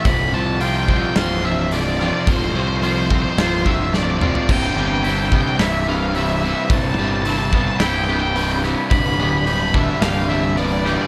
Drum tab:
CC |----------------|----------------|x---------------|----------------|
HH |o---o---o---o---|o---o---o-------|----o---o---o---|o---o---o---o---|
SD |--------o-----o-|--------o---o---|--------o-------|--------o-----o-|
T2 |----------------|--------------o-|----------------|----------------|
FT |----------------|---------------o|----------------|----------------|
BD |o-----o---------|o-----o---o-----|o-----o---------|o-----o---------|

CC |----------------|
HH |o---o---o---o---|
SD |--------o-----o-|
T2 |----------------|
FT |----------------|
BD |o-----o---------|